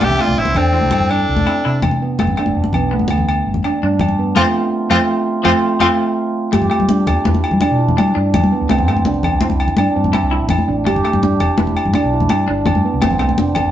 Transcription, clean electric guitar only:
0, 0, Header, 1, 3, 480
1, 0, Start_track
1, 0, Tempo, 361228
1, 15, Time_signature, 12, 3, 24, 8
1, 18223, End_track
2, 0, Start_track
2, 0, Title_t, "Clean electric guitar"
2, 0, Program_c, 0, 27
2, 15, Note_on_c, 0, 57, 88
2, 137, Note_off_c, 0, 57, 0
2, 260, Note_on_c, 0, 57, 78
2, 502, Note_off_c, 0, 57, 0
2, 972, Note_on_c, 0, 60, 74
2, 1217, Note_off_c, 0, 60, 0
2, 1947, Note_on_c, 0, 64, 76
2, 2067, Note_off_c, 0, 64, 0
2, 2191, Note_on_c, 0, 64, 87
2, 2432, Note_off_c, 0, 64, 0
2, 2918, Note_on_c, 0, 57, 91
2, 3037, Note_off_c, 0, 57, 0
2, 3156, Note_on_c, 0, 57, 77
2, 3397, Note_off_c, 0, 57, 0
2, 3869, Note_on_c, 0, 59, 72
2, 4113, Note_off_c, 0, 59, 0
2, 4841, Note_on_c, 0, 62, 78
2, 4961, Note_off_c, 0, 62, 0
2, 5091, Note_on_c, 0, 62, 82
2, 5330, Note_off_c, 0, 62, 0
2, 5783, Note_on_c, 0, 53, 98
2, 5792, Note_on_c, 0, 57, 85
2, 5797, Note_on_c, 0, 60, 78
2, 5869, Note_off_c, 0, 53, 0
2, 5869, Note_off_c, 0, 57, 0
2, 5870, Note_off_c, 0, 60, 0
2, 6510, Note_on_c, 0, 60, 94
2, 6512, Note_on_c, 0, 57, 83
2, 6520, Note_on_c, 0, 53, 76
2, 6591, Note_off_c, 0, 57, 0
2, 6592, Note_off_c, 0, 53, 0
2, 6594, Note_off_c, 0, 60, 0
2, 7218, Note_on_c, 0, 53, 94
2, 7224, Note_on_c, 0, 57, 83
2, 7229, Note_on_c, 0, 60, 96
2, 7305, Note_off_c, 0, 53, 0
2, 7306, Note_off_c, 0, 57, 0
2, 7311, Note_off_c, 0, 60, 0
2, 7702, Note_on_c, 0, 53, 93
2, 7708, Note_on_c, 0, 57, 82
2, 7717, Note_on_c, 0, 60, 84
2, 7789, Note_off_c, 0, 53, 0
2, 7789, Note_off_c, 0, 57, 0
2, 7790, Note_off_c, 0, 60, 0
2, 8665, Note_on_c, 0, 57, 95
2, 8790, Note_off_c, 0, 57, 0
2, 8899, Note_on_c, 0, 57, 85
2, 9147, Note_off_c, 0, 57, 0
2, 9639, Note_on_c, 0, 59, 81
2, 9882, Note_off_c, 0, 59, 0
2, 10591, Note_on_c, 0, 62, 82
2, 10715, Note_off_c, 0, 62, 0
2, 10830, Note_on_c, 0, 62, 90
2, 11075, Note_off_c, 0, 62, 0
2, 11550, Note_on_c, 0, 57, 98
2, 11674, Note_off_c, 0, 57, 0
2, 11801, Note_on_c, 0, 57, 84
2, 12042, Note_off_c, 0, 57, 0
2, 12511, Note_on_c, 0, 60, 83
2, 12754, Note_off_c, 0, 60, 0
2, 13461, Note_on_c, 0, 64, 85
2, 13586, Note_off_c, 0, 64, 0
2, 13703, Note_on_c, 0, 64, 85
2, 13947, Note_off_c, 0, 64, 0
2, 14677, Note_on_c, 0, 57, 84
2, 14917, Note_off_c, 0, 57, 0
2, 15386, Note_on_c, 0, 59, 83
2, 15628, Note_off_c, 0, 59, 0
2, 16344, Note_on_c, 0, 62, 78
2, 16464, Note_off_c, 0, 62, 0
2, 16578, Note_on_c, 0, 62, 91
2, 16821, Note_off_c, 0, 62, 0
2, 17301, Note_on_c, 0, 57, 99
2, 17421, Note_off_c, 0, 57, 0
2, 17535, Note_on_c, 0, 57, 85
2, 17777, Note_off_c, 0, 57, 0
2, 18223, End_track
3, 0, Start_track
3, 0, Title_t, "Muted clean electric guitar strokes"
3, 14422, Note_on_c, 9, 29, 104
3, 14555, Note_off_c, 9, 29, 0
3, 18223, End_track
0, 0, End_of_file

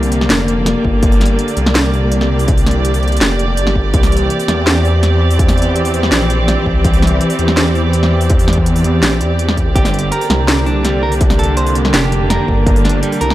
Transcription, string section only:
0, 0, Header, 1, 2, 480
1, 0, Start_track
1, 0, Tempo, 363636
1, 1357, Time_signature, 4, 2, 24, 8
1, 17614, End_track
2, 0, Start_track
2, 0, Title_t, "String section"
2, 0, Program_c, 0, 48
2, 0, Note_on_c, 0, 50, 74
2, 0, Note_on_c, 0, 58, 86
2, 0, Note_on_c, 0, 67, 81
2, 0, Note_on_c, 0, 74, 76
2, 5197, Note_on_c, 0, 52, 93
2, 5202, Note_off_c, 0, 50, 0
2, 5726, Note_on_c, 0, 60, 85
2, 6599, Note_off_c, 0, 58, 0
2, 12877, Note_off_c, 0, 52, 0
2, 12877, Note_on_c, 0, 50, 84
2, 13270, Note_on_c, 0, 58, 83
2, 14419, Note_off_c, 0, 60, 0
2, 17614, Note_off_c, 0, 50, 0
2, 17614, Note_off_c, 0, 58, 0
2, 17614, Note_off_c, 0, 67, 0
2, 17614, Note_off_c, 0, 74, 0
2, 17614, End_track
0, 0, End_of_file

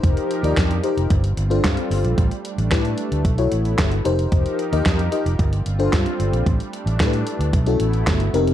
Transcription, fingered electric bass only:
0, 0, Header, 1, 2, 480
1, 0, Start_track
1, 0, Tempo, 535714
1, 31, Time_signature, 4, 2, 24, 8
1, 7651, End_track
2, 0, Start_track
2, 0, Title_t, "Fingered electric bass"
2, 0, Program_c, 0, 33
2, 33, Note_on_c, 0, 29, 106
2, 129, Note_off_c, 0, 29, 0
2, 387, Note_on_c, 0, 39, 94
2, 485, Note_off_c, 0, 39, 0
2, 511, Note_on_c, 0, 41, 101
2, 705, Note_off_c, 0, 41, 0
2, 870, Note_on_c, 0, 29, 89
2, 967, Note_off_c, 0, 29, 0
2, 991, Note_on_c, 0, 31, 97
2, 1185, Note_off_c, 0, 31, 0
2, 1228, Note_on_c, 0, 31, 101
2, 1423, Note_off_c, 0, 31, 0
2, 1471, Note_on_c, 0, 43, 117
2, 1568, Note_off_c, 0, 43, 0
2, 1706, Note_on_c, 0, 31, 90
2, 1805, Note_off_c, 0, 31, 0
2, 1828, Note_on_c, 0, 34, 91
2, 1926, Note_off_c, 0, 34, 0
2, 1953, Note_on_c, 0, 33, 100
2, 2049, Note_off_c, 0, 33, 0
2, 2312, Note_on_c, 0, 33, 106
2, 2409, Note_off_c, 0, 33, 0
2, 2432, Note_on_c, 0, 45, 100
2, 2625, Note_off_c, 0, 45, 0
2, 2793, Note_on_c, 0, 38, 83
2, 2889, Note_off_c, 0, 38, 0
2, 2910, Note_on_c, 0, 35, 102
2, 3104, Note_off_c, 0, 35, 0
2, 3155, Note_on_c, 0, 33, 86
2, 3347, Note_off_c, 0, 33, 0
2, 3392, Note_on_c, 0, 31, 103
2, 3585, Note_off_c, 0, 31, 0
2, 3634, Note_on_c, 0, 29, 93
2, 3826, Note_off_c, 0, 29, 0
2, 3872, Note_on_c, 0, 29, 111
2, 3968, Note_off_c, 0, 29, 0
2, 4234, Note_on_c, 0, 39, 99
2, 4330, Note_off_c, 0, 39, 0
2, 4352, Note_on_c, 0, 41, 89
2, 4545, Note_off_c, 0, 41, 0
2, 4711, Note_on_c, 0, 29, 97
2, 4808, Note_off_c, 0, 29, 0
2, 4831, Note_on_c, 0, 31, 101
2, 5024, Note_off_c, 0, 31, 0
2, 5071, Note_on_c, 0, 31, 92
2, 5265, Note_off_c, 0, 31, 0
2, 5313, Note_on_c, 0, 43, 121
2, 5409, Note_off_c, 0, 43, 0
2, 5551, Note_on_c, 0, 31, 87
2, 5648, Note_off_c, 0, 31, 0
2, 5665, Note_on_c, 0, 34, 100
2, 5764, Note_off_c, 0, 34, 0
2, 5792, Note_on_c, 0, 33, 95
2, 5888, Note_off_c, 0, 33, 0
2, 6146, Note_on_c, 0, 33, 101
2, 6245, Note_off_c, 0, 33, 0
2, 6273, Note_on_c, 0, 45, 94
2, 6466, Note_off_c, 0, 45, 0
2, 6622, Note_on_c, 0, 38, 83
2, 6722, Note_off_c, 0, 38, 0
2, 6750, Note_on_c, 0, 35, 104
2, 6944, Note_off_c, 0, 35, 0
2, 6987, Note_on_c, 0, 33, 93
2, 7182, Note_off_c, 0, 33, 0
2, 7228, Note_on_c, 0, 31, 100
2, 7423, Note_off_c, 0, 31, 0
2, 7467, Note_on_c, 0, 29, 89
2, 7651, Note_off_c, 0, 29, 0
2, 7651, End_track
0, 0, End_of_file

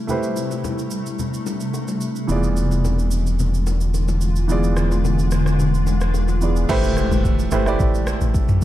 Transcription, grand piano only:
0, 0, Header, 1, 2, 480
1, 0, Start_track
1, 0, Key_signature, 0, "minor"
1, 0, Tempo, 550459
1, 78, Time_signature, 4, 2, 24, 8
1, 7538, End_track
2, 0, Start_track
2, 0, Title_t, "Grand piano"
2, 0, Program_c, 0, 0
2, 0, Control_c, 0, 64, 127
2, 64, Note_on_c, 0, 57, 71
2, 72, Note_on_c, 0, 64, 64
2, 81, Note_on_c, 0, 67, 63
2, 89, Note_on_c, 0, 71, 66
2, 99, Note_on_c, 0, 72, 80
2, 1956, Note_off_c, 0, 57, 0
2, 1960, Note_off_c, 0, 64, 0
2, 1965, Note_off_c, 0, 67, 0
2, 1969, Note_off_c, 0, 71, 0
2, 1973, Note_off_c, 0, 72, 0
2, 1983, Note_on_c, 0, 52, 74
2, 1992, Note_on_c, 0, 59, 66
2, 2001, Note_on_c, 0, 65, 63
2, 2008, Control_c, 0, 64, 0
2, 2009, Note_on_c, 0, 68, 63
2, 2018, Note_on_c, 0, 74, 81
2, 2162, Control_c, 0, 64, 127
2, 3876, Note_off_c, 0, 52, 0
2, 3880, Note_off_c, 0, 59, 0
2, 3884, Note_off_c, 0, 65, 0
2, 3889, Note_off_c, 0, 68, 0
2, 3893, Note_off_c, 0, 74, 0
2, 3904, Note_on_c, 0, 52, 73
2, 3913, Note_on_c, 0, 59, 65
2, 3922, Note_on_c, 0, 65, 67
2, 3930, Note_on_c, 0, 68, 66
2, 3939, Note_on_c, 0, 74, 78
2, 5557, Note_off_c, 0, 52, 0
2, 5562, Note_off_c, 0, 59, 0
2, 5566, Note_off_c, 0, 65, 0
2, 5571, Note_off_c, 0, 68, 0
2, 5575, Note_off_c, 0, 74, 0
2, 5592, Note_on_c, 0, 52, 57
2, 5597, Note_on_c, 0, 59, 52
2, 5601, Note_on_c, 0, 65, 51
2, 5605, Note_on_c, 0, 68, 51
2, 5610, Note_on_c, 0, 74, 61
2, 5833, Note_on_c, 0, 57, 116
2, 5835, Note_off_c, 0, 52, 0
2, 5837, Note_off_c, 0, 59, 0
2, 5837, Note_on_c, 0, 64, 102
2, 5840, Note_off_c, 0, 65, 0
2, 5841, Note_on_c, 0, 67, 104
2, 5842, Note_off_c, 0, 68, 0
2, 5844, Note_off_c, 0, 74, 0
2, 5846, Note_on_c, 0, 71, 101
2, 5848, Control_c, 0, 64, 0
2, 5850, Note_on_c, 0, 72, 126
2, 6000, Control_c, 0, 64, 127
2, 6415, Note_off_c, 0, 57, 0
2, 6417, Note_off_c, 0, 64, 0
2, 6419, Note_off_c, 0, 67, 0
2, 6421, Note_off_c, 0, 71, 0
2, 6423, Note_off_c, 0, 72, 0
2, 6554, Note_on_c, 0, 57, 94
2, 6558, Note_on_c, 0, 64, 81
2, 6562, Note_on_c, 0, 67, 83
2, 6566, Note_on_c, 0, 71, 79
2, 6571, Note_on_c, 0, 72, 97
2, 6655, Note_off_c, 0, 57, 0
2, 6658, Note_off_c, 0, 64, 0
2, 6660, Note_off_c, 0, 67, 0
2, 6662, Note_off_c, 0, 71, 0
2, 6664, Note_off_c, 0, 72, 0
2, 6678, Note_on_c, 0, 57, 82
2, 6683, Note_on_c, 0, 64, 76
2, 6687, Note_on_c, 0, 67, 74
2, 6691, Note_on_c, 0, 71, 73
2, 6695, Note_on_c, 0, 74, 93
2, 7446, Note_off_c, 0, 57, 0
2, 7449, Note_off_c, 0, 64, 0
2, 7451, Note_off_c, 0, 67, 0
2, 7453, Note_off_c, 0, 71, 0
2, 7455, Note_off_c, 0, 74, 0
2, 7538, End_track
0, 0, End_of_file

